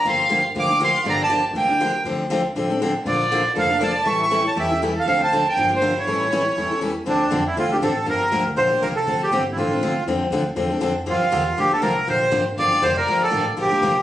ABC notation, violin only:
X:1
M:4/4
L:1/8
Q:"Swing" 1/4=240
K:Dm
V:1 name="Violin"
f3 z f2 f2 | d d2 z B4 | z8 | F4 A2 d2 |
e e2 ^c G2 z A | A c2 B2 F2 E- | E6 z2 | z8 |
z8 | z8 | z8 | z8 |
z4 f2 f d- | d d2 z B4 |]